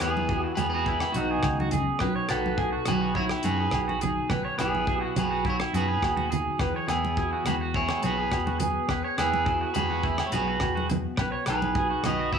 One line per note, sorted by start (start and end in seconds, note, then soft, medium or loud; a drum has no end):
0.00 0.45 E2 medium
0.00 1.45 E3 medium
0.00 0.87 B3 medium
0.00 0.55 E4 medium
0.00 2.02 G#4 medium
0.00 0.43 G#4 medium
0.00 0.28 B4 medium
0.00 cross-stick medium
0.00 closed hi-hat soft
0.00 low agogo medium
0.17 high conga medium
0.29 2.04 F#4 medium
0.29 0.44 G#4 medium
0.29 kick medium
0.43 0.55 F#4 medium
0.43 muted clean electric guitar stroke medium
0.55 1.02 E2 medium
0.55 1.97 G#3 medium
0.55 0.72 G#4 medium
0.55 0.69 B4 medium
0.55 closed hi-hat soft
0.55 low conga medium
0.55 low agogo medium
0.70 1.12 G#4 medium
0.70 1.11 B4 medium
0.74 0.87 F#4 medium
0.86 2.02 B3 medium
0.86 1.15 E4 medium
0.86 kick medium
1.00 cross-stick medium
1.00 low agogo medium
1.12 1.37 B1 medium
1.12 1.69 D#4 medium
1.12 1.67 F#4 medium
1.12 1.30 F#4 medium
1.12 closed hi-hat soft
1.12 high conga medium
1.16 1.99 B2 medium
1.31 1.58 G#4 medium
1.42 1.87 C#2 medium
1.42 1.73 D#3 medium
1.42 kick medium
1.42 cross-stick medium
1.42 low agogo medium
1.60 1.72 F#4 medium
1.60 high conga medium
1.71 2.02 C#3 medium
1.71 2.00 G#4 medium
1.71 closed hi-hat soft
1.71 high conga medium
1.71 low conga medium
1.99 2.12 B1 medium
1.99 3.45 B2 medium
1.99 2.89 F#3 medium
1.99 2.29 D#4 medium
1.99 2.15 B4 medium
1.99 kick medium
1.99 cross-stick medium
1.99 low agogo medium
2.04 2.59 F#4 medium
2.04 4.32 B4 medium
2.16 2.29 C#5 medium
2.29 2.74 B1 medium
2.29 3.19 D#4 medium
2.29 2.84 F#4 medium
2.29 2.88 A4 medium
2.29 2.57 B4 medium
2.29 cross-stick medium
2.29 closed hi-hat soft
2.29 low agogo medium
2.46 high conga medium
2.57 3.75 F#4 medium
2.57 2.72 G#4 medium
2.57 kick medium
2.72 3.00 F#4 medium
2.86 3.32 B1 loud
2.86 5.16 F#3 medium
2.86 3.15 G#4 medium
2.86 3.16 B4 medium
2.86 cross-stick medium
2.86 closed hi-hat soft
2.86 low conga medium
2.86 low agogo medium
3.02 3.15 F#4 medium
3.15 3.43 E4 medium
3.15 3.24 F#4 medium
3.15 3.24 C#5 loud
3.15 kick medium
3.19 4.03 D#4 medium
3.29 cross-stick medium
3.29 low agogo medium
3.43 3.66 F#2 medium
3.43 4.28 B2 medium
3.43 3.59 F#4 medium
3.43 3.98 G#4 medium
3.43 3.99 B4 medium
3.43 closed hi-hat medium
3.43 high conga medium
3.60 3.87 G#4 medium
3.71 4.17 B1 medium
3.71 kick medium
3.71 cross-stick medium
3.71 low agogo medium
3.75 4.88 F#4 medium
3.88 4.01 F#4 medium
3.88 high conga medium
4.01 4.28 D#4 medium
4.01 4.29 G#4 medium
4.01 closed hi-hat soft
4.01 high conga medium
4.01 low conga medium
4.29 4.42 B1 medium
4.29 5.72 B2 medium
4.29 4.44 B4 medium
4.29 6.61 B4 medium
4.29 kick medium
4.29 cross-stick medium
4.29 low conga medium
4.29 low agogo medium
4.45 4.57 C#5 medium
4.58 5.03 B1 medium
4.58 5.13 E4 medium
4.58 5.02 G#4 medium
4.58 4.86 B4 medium
4.58 cross-stick medium
4.58 closed hi-hat soft
4.58 low conga medium
4.58 low agogo medium
4.75 high conga medium
4.87 6.02 F#4 medium
4.87 5.01 G#4 medium
4.87 kick medium
5.01 5.29 F#4 medium
5.01 5.13 F#4 medium
5.16 5.61 B1 medium
5.16 7.47 F#3 medium
5.16 5.44 G#4 medium
5.16 5.48 B4 medium
5.16 closed hi-hat soft
5.16 high conga medium
5.16 low conga medium
5.16 low agogo medium
5.31 5.44 F#4 medium
5.45 6.31 D#4 medium
5.45 5.73 E4 medium
5.45 5.55 F#4 medium
5.45 kick medium
5.49 5.57 C#5 medium
5.60 cross-stick medium
5.60 low agogo medium
5.73 5.96 F#2 medium
5.73 6.57 B2 medium
5.73 5.88 F#4 medium
5.73 6.28 G#4 medium
5.73 6.29 B4 medium
5.73 closed hi-hat soft
5.73 high conga medium
5.89 6.16 G#4 medium
6.02 6.46 D#2 medium
6.02 6.64 F#4 medium
6.02 kick medium
6.02 cross-stick medium
6.02 low agogo medium
6.17 6.30 F#4 medium
6.17 high conga medium
6.31 6.57 D#4 medium
6.31 6.58 G#4 medium
6.31 closed hi-hat soft
6.31 low conga medium
6.59 6.71 E2 medium
6.59 8.87 E3 medium
6.59 8.88 G#4 medium
6.59 6.74 B4 medium
6.59 kick medium
6.59 cross-stick medium
6.59 low agogo medium
6.76 6.88 C#5 medium
6.88 7.32 E2 medium
6.88 7.77 B3 medium
6.88 7.42 E4 medium
6.88 7.42 G#4 medium
6.88 muted clean electric guitar stroke medium
6.88 cross-stick medium
6.88 closed hi-hat soft
6.88 low agogo medium
7.05 high conga medium
7.17 8.31 F#4 medium
7.17 7.32 G#4 medium
7.17 kick medium
7.33 7.60 F#4 medium
7.45 7.90 E2 medium
7.45 8.87 G#3 medium
7.45 7.54 G#4 medium
7.45 7.54 B4 medium
7.45 cross-stick medium
7.45 closed hi-hat soft
7.45 low conga medium
7.45 low agogo medium
7.61 7.74 F#4 medium
7.74 8.62 B3 medium
7.74 8.02 E4 medium
7.74 8.02 G#4 medium
7.74 8.05 C#5 loud
7.74 kick medium
7.89 cross-stick medium
7.89 low agogo medium
8.03 8.25 B1 medium
8.03 8.86 B2 medium
8.03 8.18 F#4 medium
8.03 8.58 G#4 medium
8.03 8.58 B4 medium
8.03 closed hi-hat soft
8.03 high conga medium
8.18 8.46 G#4 medium
8.31 8.76 E2 medium
8.31 8.92 F#4 medium
8.31 kick medium
8.31 cross-stick medium
8.31 low agogo medium
8.46 8.59 F#4 medium
8.46 high conga medium
8.60 9.19 B3 medium
8.60 8.88 G#4 medium
8.60 closed hi-hat medium
8.60 high conga medium
8.60 low conga medium
8.88 9.00 E2 medium
8.88 11.19 G#4 medium
8.88 9.04 B4 medium
8.88 muted nylon-string guitar stroke medium
8.88 kick medium
8.88 cross-stick medium
8.88 low agogo medium
9.04 9.18 C#5 medium
9.18 9.62 E2 medium
9.18 10.05 B3 medium
9.18 9.72 E4 medium
9.18 9.72 G#4 medium
9.18 9.46 B4 medium
9.18 cross-stick medium
9.18 closed hi-hat soft
9.18 low agogo medium
9.33 high conga medium
9.46 10.63 F#4 medium
9.46 9.61 G#4 medium
9.46 kick medium
9.61 9.89 F#4 medium
9.74 10.20 E2 medium
9.74 11.16 G#3 medium
9.74 10.23 G#4 medium
9.74 10.26 B4 loud
9.74 closed hi-hat soft
9.74 low conga medium
9.74 low agogo medium
9.90 10.04 F#4 medium
10.03 10.92 B3 medium
10.03 10.31 E4 medium
10.03 kick medium
10.18 cross-stick medium
10.18 low agogo medium
10.26 10.32 C#5 medium
10.32 10.55 B1 medium
10.32 11.15 B2 medium
10.32 10.47 F#4 medium
10.32 10.87 G#4 medium
10.32 10.86 B4 medium
10.32 closed hi-hat soft
10.32 high conga medium
10.48 10.74 F#4 medium
10.60 11.05 E2 medium
10.60 11.78 F#4 medium
10.60 kick medium
10.60 cross-stick medium
10.60 low agogo medium
10.75 10.89 F#4 medium
10.75 high conga medium
10.89 11.49 B3 medium
10.89 muted clean electric guitar stroke medium
10.89 closed hi-hat soft
10.89 high conga medium
10.89 low conga medium
11.17 11.30 B1 loud
11.17 11.31 B4 medium
11.17 muted nylon-string guitar stroke medium
11.17 kick medium
11.17 cross-stick medium
11.17 low agogo medium
11.21 12.39 B4 medium
11.32 11.46 C#5 medium
11.46 11.91 B1 medium
11.46 12.34 D#4 medium
11.46 11.75 B4 medium
11.46 12.06 B4 medium
11.46 cross-stick medium
11.46 closed hi-hat soft
11.46 low agogo medium
11.51 12.03 G#4 medium
11.62 high conga medium
11.75 12.39 F#4 medium
11.75 11.90 G#4 medium
11.75 kick medium
11.90 12.18 F#4 medium
12.03 12.39 B1 medium
12.03 12.39 F#3 medium
12.03 12.33 B4 medium
12.03 12.33 D#5 medium
12.03 cross-stick medium
12.03 closed hi-hat soft
12.03 low conga medium
12.03 low agogo medium
12.19 12.33 F#4 medium
12.33 12.39 D#4 medium
12.33 12.39 E4 medium
12.33 12.39 B4 medium
12.33 12.39 E5 medium
12.33 kick medium